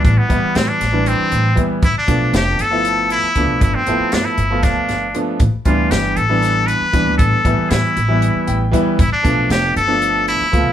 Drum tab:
HH |xxxxxxx|xxxxxxx|xxxxxxx|xxxxxxx|
SD |--oo---|--o----|--o-oo-|--o-o--|
BD |oo----o|oo----o|o---o--|oo----o|

HH |xxxxxxx|xxxxxxx|
SD |--o----|--o----|
BD |oo----o|oo----o|